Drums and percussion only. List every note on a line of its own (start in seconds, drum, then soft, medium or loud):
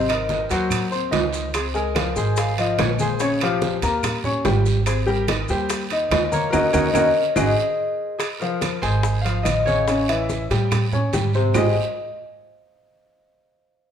0.09 high conga soft
0.09 high timbale medium
0.09 claves medium
0.09 maracas soft
0.29 high conga medium
0.29 low timbale medium
0.29 short guiro medium
0.29 maracas soft
0.49 high conga soft
0.49 high timbale medium
0.49 short guiro medium
0.49 maracas medium
0.70 high conga soft
0.70 low conga medium
0.70 high timbale loud
0.70 long guiro medium
0.70 claves medium
0.70 maracas medium
0.92 high conga soft
0.92 maracas soft
1.12 high conga medium
1.12 high timbale medium
1.12 low timbale medium
1.12 short guiro medium
1.12 maracas soft
1.33 short guiro medium
1.33 maracas medium
1.54 high bongo medium
1.54 high conga soft
1.54 high timbale medium
1.54 long guiro medium
1.54 claves medium
1.54 maracas medium
1.75 high bongo soft
1.75 high conga soft
1.75 maracas soft
1.95 high bongo medium
1.95 high conga loud
1.95 high timbale medium
1.95 low timbale medium
1.95 short guiro medium
1.95 claves medium
1.95 maracas soft
2.16 high bongo soft
2.16 high conga soft
2.16 short guiro medium
2.16 maracas medium
2.36 high bongo medium
2.36 high conga soft
2.36 high timbale medium
2.36 long guiro medium
2.36 maracas medium
2.58 high conga soft
2.58 high timbale medium
2.58 maracas soft
2.78 high bongo medium
2.78 low bongo medium
2.78 high conga medium
2.78 high timbale medium
2.78 low timbale medium
2.78 short guiro medium
2.78 claves medium
2.78 maracas soft
2.99 high bongo soft
2.99 high conga medium
2.99 short guiro medium
2.99 maracas medium
3.20 high bongo medium
3.20 high timbale medium
3.20 long guiro medium
3.20 maracas medium
3.40 high bongo soft
3.40 high conga soft
3.40 high timbale medium
3.40 claves medium
3.40 maracas soft
3.62 high bongo medium
3.62 high conga loud
3.62 low timbale medium
3.62 short guiro medium
3.62 maracas soft
3.82 high bongo soft
3.82 high conga soft
3.82 high timbale medium
3.82 short guiro medium
3.82 maracas medium
4.03 high bongo medium
4.03 high conga soft
4.03 low conga medium
4.03 high timbale medium
4.03 long guiro medium
4.03 claves medium
4.03 maracas medium
4.24 high conga soft
4.24 low conga medium
4.24 maracas soft
4.45 high bongo medium
4.45 low bongo loud
4.45 high conga medium
4.45 high timbale medium
4.45 low timbale medium
4.45 short guiro medium
4.45 maracas soft
4.66 high bongo soft
4.66 short guiro medium
4.66 maracas medium
4.86 high bongo medium
4.86 high conga soft
4.86 high timbale medium
4.86 long guiro medium
4.86 claves medium
4.86 maracas medium
5.07 high bongo soft
5.07 high conga soft
5.07 maracas soft
5.28 high bongo medium
5.28 high conga loud
5.28 high timbale loud
5.28 low timbale medium
5.28 short guiro medium
5.28 claves medium
5.28 maracas soft
5.48 high bongo soft
5.48 high conga soft
5.48 short guiro medium
5.48 maracas medium
5.70 high bongo medium
5.70 high conga soft
5.70 high timbale medium
5.70 long guiro medium
5.70 maracas medium
5.90 high conga soft
5.90 high timbale medium
5.90 maracas soft
6.11 high bongo medium
6.11 low bongo medium
6.11 high conga medium
6.11 high timbale medium
6.11 low timbale medium
6.11 short guiro medium
6.11 claves medium
6.11 maracas soft
6.32 high bongo soft
6.32 high conga medium
6.32 short guiro medium
6.32 maracas medium
6.53 low bongo loud
6.53 high conga loud
6.53 high timbale medium
6.53 long guiro loud
6.53 claves loud
6.53 maracas medium
6.74 low bongo loud
6.74 high conga loud
6.74 high timbale medium
6.74 long guiro loud
6.74 claves medium
6.74 maracas loud
6.94 low bongo medium
6.94 high conga loud
6.94 high timbale loud
6.94 long guiro medium
6.94 claves medium
6.94 maracas medium
7.36 low bongo loud
7.36 high conga loud
7.36 high timbale loud
7.36 long guiro loud
7.36 claves loud
7.36 maracas loud
8.19 high bongo medium
8.19 high conga soft
8.19 high timbale medium
8.19 long guiro medium
8.19 claves medium
8.19 maracas medium
8.41 high bongo soft
8.41 high conga soft
8.41 maracas soft
8.61 high bongo medium
8.61 high conga loud
8.61 high timbale medium
8.61 short guiro medium
8.61 claves medium
8.61 maracas medium
8.83 high bongo soft
8.83 high conga soft
8.83 high timbale medium
8.83 short guiro medium
8.83 maracas soft
9.03 high bongo medium
9.03 high conga soft
9.03 long guiro medium
9.03 maracas medium
9.25 high bongo soft
9.25 high conga soft
9.25 high timbale medium
9.25 maracas soft
9.45 high bongo soft
9.45 low bongo loud
9.45 high conga medium
9.45 high timbale medium
9.45 short guiro medium
9.45 claves medium
9.45 maracas medium
9.67 high conga medium
9.67 short guiro medium
9.67 maracas soft
9.88 high bongo medium
9.88 high conga soft
9.88 high timbale medium
9.88 long guiro medium
9.88 maracas medium
10.08 high bongo soft
10.08 high conga soft
10.08 high timbale medium
10.08 claves medium
10.08 maracas soft
10.29 high bongo medium
10.29 high conga medium
10.29 short guiro medium
10.29 maracas medium
10.50 high bongo soft
10.50 high conga soft
10.50 high timbale medium
10.50 short guiro medium
10.50 maracas soft
10.71 high bongo medium
10.71 high conga soft
10.71 low conga medium
10.71 high timbale medium
10.71 long guiro medium
10.71 claves medium
10.71 maracas medium
10.92 high bongo soft
10.92 high conga soft
10.92 low conga medium
10.92 maracas soft
11.13 high bongo soft
11.13 low bongo medium
11.13 high conga medium
11.13 high timbale medium
11.13 short guiro medium
11.13 maracas medium
11.33 high conga soft
11.33 short guiro medium
11.33 maracas soft
11.54 low bongo loud
11.54 low conga loud
11.54 low timbale loud
11.54 long guiro medium
11.54 claves loud
11.54 maracas medium